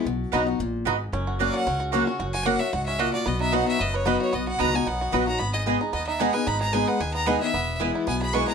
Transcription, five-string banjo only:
X:1
M:4/4
L:1/8
Q:"Swing" 1/4=225
K:B
V:1 name="Five-string banjo"
z2 [B,DF] z3 [B,DF] z | C F C F C F C F | F F F F F C F F | B, D B, F B, B B, F |
B, F B, D B, F B F | B, G B, D B, D G B | D G D B G B, B G | B,2 B, E B, G B G |]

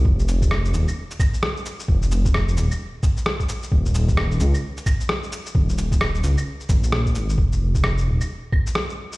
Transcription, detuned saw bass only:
X:1
M:4/4
L:1/16
Q:"Swing 16ths" 1/4=131
K:Ebmix
V:1 name="Detuned saw bass" clef=bass
F,,,2 F,,,4 E,,, z8 z | F,,,2 F,,,4 E,,, z8 z | E,,,2 E,,,4 D,, z8 z | E,,,2 E,,,4 D,, z3 B,,,4 A,,,2 |
F,,,2 F,,,4 E,,, z8 z |]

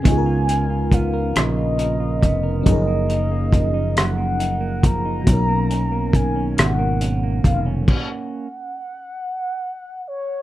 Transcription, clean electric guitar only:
X:1
M:6/8
L:1/16
Q:3/8=46
K:Blyd
V:1 name="Clean electric guitar"
C, E A E B, A C, E A E B, A | F,, A, D A, E, D F,, A, D A, E, D | B,, A, C A, D, C B,, A, C A, D, C | z12 |]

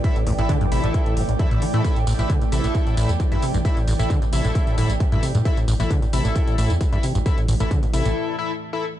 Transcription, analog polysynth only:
X:1
M:4/4
L:1/16
Q:1/4=133
K:Cmix
V:1 name="Analog polysynth"
[EAe] z2 [EAe] z2 [EAe]4 z2 [EAe] [EAe] z [EAe] | [EAe] z2 [EAe] z2 [EAe]4 [EAe] z2 [EAe] z2 | [EAe] z2 [EAe] z2 [EAe]4 [EAe] z2 [EAe] z2 | [EAe] z2 [EAe] z2 [EAe]4 [EAe] z2 [EAe] z2 |
[EAe] z2 [EAe] z2 [EAe]4 [EAe] z2 [EAe] z2 |]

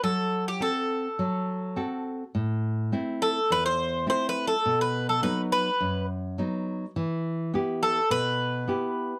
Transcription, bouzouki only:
X:1
M:4/4
L:1/16
Q:1/4=104
K:Em
V:1 name="Bouzouki"
A3 G A8- A2 z2 | z6 A2 B c3 (3c2 B2 A2- | A B2 A B z B4 z6 | z6 A2 B8 |]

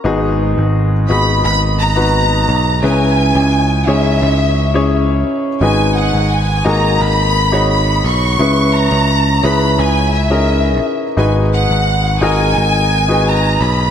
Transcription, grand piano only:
X:1
M:4/4
L:1/16
Q:1/4=86
K:G#m
V:1 name="Grand piano"
[B,DFG]4- [B,DFG] z [B,DFG]4 z [B,DFB]4 z | [CEGB]4- [CEGB] z [CDEGc]4 z [CEGc]4 z | [DFGB]4- [DFGB] z [A,DFG]4 z [DFGc]4 z | [CEGB]4- [CEGB] z [CEGB]4 z [CDEGA]4 z |
[DFGB]4- [DFGB] z [DFGA]4 z [DFGB]4 z |]
V:2 name="Grand piano" clef=bass
G,,6 z8 z2 | C,6 z8 z2 | G,,6 z8 z2 | C,6 z8 z2 |
G,,6 z8 z2 |]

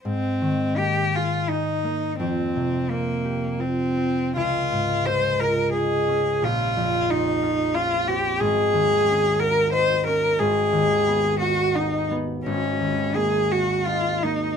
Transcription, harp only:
X:1
M:3/4
L:1/8
Q:1/4=87
K:Ab
V:1 name="Harp"
A,, E, B, A E B, | F,, C, C G F C | D,, A,, D F E D | B,,, F,, C F D C |
[K:Abmix] A,,, E,, D G E D | A,,, E,, _C G E C | A,,, E,, B, G E B, |]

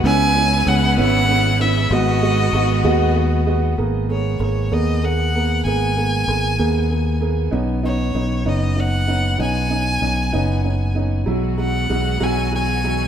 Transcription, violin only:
X:1
M:6/8
L:1/8
Q:3/8=64
K:G#m
V:1 name="Violin"
g2 f f2 e | d4 z2 | z c c d f2 | g4- g z |
z c2 d f2 | g4- g z | z f2 g g2 |]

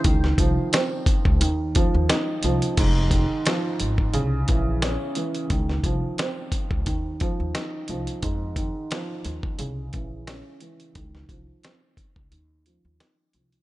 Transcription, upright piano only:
X:1
M:4/4
L:1/8
Q:"Swing 16ths" 1/4=88
K:Fm
V:1 name="Upright piano" clef=bass
E, F, C2 E, F, E F, | A,, E, F,2 D, =E, D E, | E, F, C2 E, F, E F, | A,, E, F,2 D, =E, D E, |
E, F, C2 E, F, E F, |]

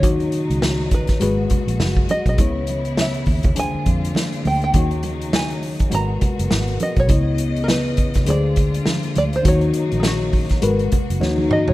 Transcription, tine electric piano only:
X:1
M:4/4
L:1/8
Q:"Swing 16ths" 1/4=102
K:G#m
V:1 name="Tine electric piano"
[D,DFc]4 [G,FGB]4 | [C,B,Ec]4 [=D,=DG^B]4 | [D,DFc]4 [G,FAB]4 | [C,B,Ed]4 [=D,=DG^B]4 |
[D,DFc]4 [G,FAB]2 [D,DFc]2 |]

